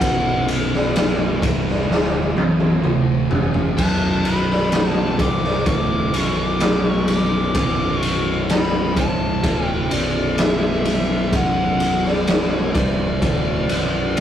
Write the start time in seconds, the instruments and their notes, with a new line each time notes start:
Already playing: lead electric guitar F#5
0.00 picked electric bass B0, distorted electric guitar B1 F#2 B2, kick, ride
0.48 ride
0.74 snare
0.96 snare, ride
1.41 picked electric bass C1, distorted electric guitar C2 G2 C3, kick, ride
1.68 snare
1.87 picked electric bass D1, distorted electric guitar D2 A2 D3, snare
2.35 picked electric bass B0, distorted electric guitar B1 F#2 B2, high tom
2.60 high tom
2.83 picked electric bass D1, distorted electric guitar D2 A2 D3, mid tom
3.30 picked electric bass F#1, distorted electric guitar F#2 C#3 F#3, floor tom
3.54 floor tom
3.77 picked electric bass B0, distorted electric guitar B1 F#2 B2, lead electric guitar A5, kick, ride, crash
4.25 lead electric guitar B5, ride
4.50 snare
4.72 snare, ride
4.89 lead electric guitar A5
5.19 picked electric bass C1, distorted electric guitar C2 G2 C3, lead electric guitar D6, kick, ride
5.44 snare
5.66 picked electric bass D1, distorted electric guitar D2 A2 D3, lead electric guitar D6, kick, ride
6.13 picked electric bass B0, distorted electric guitar B1 F#2 B2, ride
6.18 lead electric guitar C#6
6.37 lead electric guitar D6
6.60 snare, ride
6.88 lead electric guitar C#6
7.08 lead electric guitar D6, ride
7.55 picked electric bass B0, distorted electric guitar B1 F#2 B2, kick, ride
7.97 lead electric guitar C#6
8.03 ride
8.49 lead electric guitar B5, snare, ride
8.96 picked electric bass C1, distorted electric guitar C2 G2 C3, lead electric guitar A5, kick, ride
9.43 picked electric bass D1, distorted electric guitar D2 A2 D3, kick, ride
9.66 lead electric guitar G5
9.91 picked electric bass B0, distorted electric guitar B1 F#2 B2, lead electric guitar D5, ride
10.38 lead electric guitar E5, snare, ride
10.85 ride
11.32 picked electric bass B0, distorted electric guitar B1 F#2 B2, lead electric guitar F#5, kick, ride
11.80 ride
12.05 lead electric guitar D5, snare
12.27 snare, ride
12.56 lead electric guitar C#5
12.74 picked electric bass C1, distorted electric guitar C2 G2 C3, lead electric guitar D5, kick, ride
13.22 picked electric bass D1, distorted electric guitar D2 A2 D3, kick, ride
13.69 picked electric bass B0, distorted electric guitar B1 F#2 B2, ride
14.17 ride